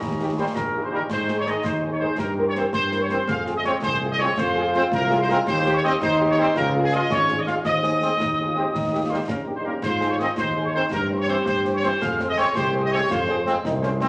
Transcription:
Already playing: G4 A#4 A#5
0.01 D#2, concert bass drum, snare
0.20 A#3 D#4 G4
0.36 D#3 G3 A#3 D#4 G4 C5 C6
0.55 A#1 A#4 A#5, concert bass drum, snare
0.74 A#3 D#4 G4
0.83 C5 C6
0.91 D#3 G3 A#3 D#4 G4 A#4 A#5
1.10 G#2 D#4 C5 C6, concert bass drum, snare, crash
1.28 C4 D#4 G#4, snare
1.38 C#5 C#6
1.46 D#3 G#3 C4 D#4 G#4 D#5 D#6, snare
1.63 D#2 C5 C6, concert bass drum, snare
1.82 C4 D#4 G#4
1.92 C#5 C#6
1.99 D#3 G#3 C4 D#4 G#4 C5 C6
2.18 G2 G4 A#4 A#5, concert bass drum, snare
2.38 C4 E4 A#4
2.47 C#5 C#6
2.55 E3 C4 E4 A#4 C5 C6, snare
2.73 G2 C5 C6, concert bass drum, snare
2.91 C4 E4 A#4, snare
3.01 C#5 C#6
3.09 E3 C4 E4 A#4 C5 C6, snare
3.27 F2 G#4 F5 F6, concert bass drum, snare, crash
3.46 C4 F4 G#4, snare
3.56 D#5 D#6
3.64 G#3 C4 F4 G#4 C#5 C#6, snare
3.82 C2 G#4 C5 C6, concert bass drum, snare
4.01 C4 F4 G#4
4.11 D#5 D#6
4.19 G#3 C4 F4 G#4 C#5 C#6
4.37 F2 F4 C5 C6, concert bass drum, snare
4.55 C4 F4 G#4
4.74 G#3 C4 F4 G#4 C5 C6, snare
4.92 C2 A#4 A#5, concert bass drum, snare
5.10 C4 F4 G#4, snare
5.19 C5 C6
5.28 G#3 C4 F4 G#4 A#4 A#5, snare
5.46 D#2 G4 C5 C6, concert bass drum, snare, crash
5.65 C4 G4, snare
5.74 C#5 C#6
5.83 G3 C4 G4 D#5 D#6, snare
6.02 D#2 D#4 C5 C6, concert bass drum, snare
6.20 C4 G4
6.30 C#5 C#6
6.38 G3 C4 G4 C5 C6
6.56 C#2 F4 A#4 A#5, concert bass drum, snare
6.74 G#3 F4 G#4
6.84 G#4 G#5
6.92 G#3 F4 G#4 D#5 D#6, snare
7.10 G#1 C#4 C#5 C#6, concert bass drum, snare
7.28 G#3 F4 G#4, snare
7.38 D#5 D#6
7.46 G#3 F4 G#4 F5 F6, snare
7.64 D#2 C4 D#5 D#6, concert bass drum, snare, crash
7.83 C4 D#4 G#4, snare
8.01 G#3 C4 D#4 G#4, snare
8.19 D#2 D#4, concert bass drum, snare
8.38 C4 D#4 G#4
8.47 F4
8.55 G#3 C4 D#4 G4 G#4
8.74 D#2 D#4, concert bass drum, snare
8.92 A#3 D#4 G4
9.03 F4
9.09 G3 A#3 D#4 G4 C5 C6
9.28 A#1 C#4 A#4 A#5, concert bass drum, snare
9.46 A#3 D#4 G4
9.56 D#4 C5 C6
9.64 G3 A#3 C#4 D#4 G4 A#4 A#5
9.82 G#2 F4 C5 C6, concert bass drum, snare, crash
10.00 C4 D#4 G#4, snare
10.10 C#5 C#6
10.18 D#3 C4 D#4 G#4 D#5 D#6, snare
10.37 D#2 D#4 C5 C6, concert bass drum, snare
10.56 C4 D#4 G#4
10.65 C#5 C#6
10.73 D#3 C4 D#4 G#4 C5 C6
10.91 G2 G4 A#4 A#5, concert bass drum, snare
11.11 C4 E4 C5
11.18 C#5 C#6
11.27 E3 C4 E4 C5 C6, snare
11.46 G2 C5 C6, concert bass drum, snare
11.65 C4 E4 C5, snare
11.74 C#5 C#6
11.83 E3 C4 E4 C5 C6, snare
12.01 F2 G#4 F5 F6, concert bass drum, snare, crash
12.19 C4 G#4 C5, snare
12.29 D#5 D#6
12.37 G#3 C4 G#4 C5 C#5 C#6, snare
12.55 C2 G4 C5 C6, concert bass drum, snare
12.74 C4 G#4 C5
12.82 D#5 D#6
12.91 G#3 C4 G#4 C5 C#5 C#6
13.10 F2 F4 C5 C6, concert bass drum, snare
13.28 C4 G#4 C5
13.46 G#3 C4 F4 G#4 C5, snare
13.64 C2 D#4, concert bass drum, snare
13.82 C4 C#4 G#4 C5, snare
14.00 G#3 C4 G#4 C5, snare

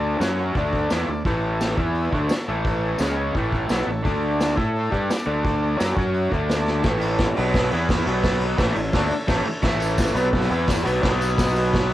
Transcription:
Already playing: D2 D3 A3 D4 A4 D5
0.19 F#2 F#3 C#4 F#4 C#5, snare, open hi-hat, tambourine
0.53 D2 D3 D4 A4 D5, kick, open hi-hat
0.58 A3 D4
0.73 kick
0.90 E2 E3 B3 E4, snare, open hi-hat, tambourine
1.08 D2 D3 A3
1.25 A1 A2 E3 A3 E4 A4 C#5, kick, open hi-hat
1.60 snare, open hi-hat, tambourine
1.77 E2 E3 B3 E4 B4 E5, kick
1.95 open hi-hat
2.11 D2 D3 A3 D4 E4 A4 C#5, kick
2.29 muted overdriven electric guitar stroke, muted fingered electric bass stroke, snare, tambourine
2.48 A1 A2 E3 A3
2.64 kick, open hi-hat
2.99 C#2 C#3 G#3 C#4 G#4 C#5, snare, open hi-hat, tambourine
3.03 C#4
3.33 A1 A2 E3 E4 A4 C#5, kick, open hi-hat
3.37 A3
3.52 kick
3.69 B1 B2 F#3 B3, snare, open hi-hat, tambourine
3.87 A1 A2 E3
4.03 D2 D3 A3 D4 A4 D5, kick, open hi-hat
4.40 snare, open hi-hat, tambourine
4.55 A2 A3 E4 A4 E5, kick
4.75 open hi-hat
4.91 G2 G3 D4 G4 A4 D5, kick
5.09 muted overdriven electric guitar stroke, muted fingered electric bass stroke, snare, open hi-hat, tambourine
5.26 D2 D3 A3 D4
5.45 kick, open hi-hat
5.78 F#2 F#3 C#4 F#4, snare, open hi-hat, tambourine
5.95 F#2 F#3 C#4 F#4 C#5, kick
6.14 open hi-hat
6.32 D2 D3 A3 D4 A4 D5, kick
6.49 snare, open hi-hat, tambourine
6.68 snare
6.83 A1 A2 E3 A3 E4 A4 C#5, kick, snare, crash
7.01 ride
7.18 kick, snare, ride
7.37 B1 B2 F#3 B3 F#4 B4, ride
7.54 kick, snare, ride
7.70 E2 E3 B3 E4 B4, ride
7.89 kick, snare, ride
8.06 B1 B2 F#3 B3 F#4 B4, ride
8.23 kick, snare, ride
8.41 ride
8.58 A1 A2 E3 A3 C#4 E4 A4, kick, snare, ride
8.75 A1 A2 E3, ride
8.93 D2 D3 A3 D4, kick, snare, ride
9.10 muted overdriven electric guitar stroke, muted fingered electric bass stroke, ride
9.28 A1 A2 E3 A3, kick, snare, ride
9.45 muted fingered electric bass stroke, muted overdriven electric guitar stroke, ride
9.62 A1 A2 E3 A3, kick, snare, crash
9.73 tambourine
9.80 ride, tambourine
9.91 tambourine
9.98 kick, snare, ride, tambourine
10.07 tambourine
10.13 B1 B2 F#3 B3 F#4 B4, ride, tambourine
10.25 tambourine
10.32 kick, snare, ride
10.43 tambourine
10.49 E2 E3 B3 E4 B4, ride, tambourine
10.67 kick, snare, ride, tambourine
10.84 B1 B2 F#3 B3, ride, tambourine
10.97 tambourine
11.02 B1 B2 F#3 B3 F#4 B4, kick, snare, ride, tambourine
11.13 tambourine
11.21 ride, tambourine
11.38 kick, snare, ride, tambourine
11.48 tambourine
11.56 ride, tambourine
11.65 tambourine
11.74 kick, snare, ride, tambourine

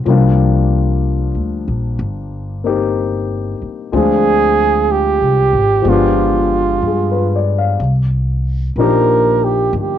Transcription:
0.05 C2 F3 G3 A#3
0.10 D4 F4
1.35 D2
1.68 A#1
1.99 G1
2.64 A#3 C4 D#4 G4
3.62 muted upright bass stroke
3.92 D2 F3 G#3 C4 D4 F4 G#4
4.91 G4
5.21 C2
5.53 G#1
5.82 G1 F3 G#3
5.87 B3 D4 F4
5.93 G4
6.82 G2
6.87 G#4
7.11 B4
7.36 D5
7.58 F5
7.80 C2
8.76 A#1 F3 A#3 D4 D#4 A#4
8.80 G4
9.44 G4
9.73 G1
9.80 G4

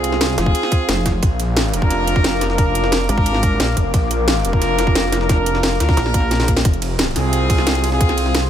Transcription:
Already playing: C2 C4 F4 G#4 F5 C6
0.04 closed hi-hat, ride
0.12 snare
0.21 snare, closed hi-hat, ride
0.29 ride
0.38 F1 C4 F4 G#4, snare, closed hi-hat, ride
0.46 kick
0.55 closed hi-hat, ride
0.63 snare
0.72 kick, closed hi-hat, ride
0.89 F1, snare, closed hi-hat, ride
1.06 kick, snare, closed hi-hat, ride
1.23 A#1 A#4 F5 D6, kick, closed hi-hat, ride
1.40 closed hi-hat, ride
1.57 snare, closed hi-hat, ride
1.73 F1 D4 F4 A#4, closed hi-hat, ride
1.82 kick
1.90 snare, closed hi-hat, ride
2.07 closed hi-hat, ride
2.16 kick
2.24 snare, closed hi-hat, ride
2.41 snare, closed hi-hat, ride
2.50 D4 F4 A#4, snare
2.58 kick, closed hi-hat, ride
2.75 closed hi-hat, ride
2.84 snare
2.92 snare, closed hi-hat, ride
3.01 ride
3.09 G#1 D4 F4 A#4, closed hi-hat, ride
3.18 kick
3.26 closed hi-hat, ride
3.35 snare
3.43 kick, closed hi-hat, ride
3.60 A#1, snare, closed hi-hat, ride
3.77 F1, kick, closed hi-hat, ride
3.94 A#1, kick, closed hi-hat, ride
4.11 closed hi-hat, ride
4.28 snare, closed hi-hat, ride
4.45 F1 D4 F4 A#4, closed hi-hat, ride
4.53 kick
4.62 snare, closed hi-hat, ride
4.79 snare, closed hi-hat, ride
4.87 kick
4.95 snare, closed hi-hat, ride
5.12 snare, closed hi-hat, ride
5.21 D4 F4 A#4, snare
5.29 kick, snare, closed hi-hat, ride
5.46 closed hi-hat, ride
5.55 snare
5.63 snare, closed hi-hat, ride
5.72 ride
5.80 D2 D4 F4 A#4, snare, closed hi-hat, ride
5.89 kick, snare
5.97 A#1, snare, closed hi-hat, ride
6.06 snare
6.14 kick, closed hi-hat, ride
6.31 snare, closed hi-hat, ride
6.40 snare
6.48 kick, closed hi-hat, ride
6.57 snare
6.65 F1 G#4 F5 C6, kick, closed hi-hat, ride
6.74 closed hi-hat
6.82 closed hi-hat, ride
6.99 snare, closed hi-hat, ride
7.16 C2 C4 F4 G#4, snare, closed hi-hat, ride
7.33 closed hi-hat, ride
7.50 kick, closed hi-hat, ride
7.58 snare
7.67 snare, closed hi-hat, ride
7.75 closed hi-hat
7.84 closed hi-hat, ride
7.92 C4 F4 G#4, snare
8.01 kick, closed hi-hat, ride
8.09 snare, closed hi-hat
8.18 closed hi-hat, ride
8.26 snare
8.35 snare, closed hi-hat, ride
8.43 ride

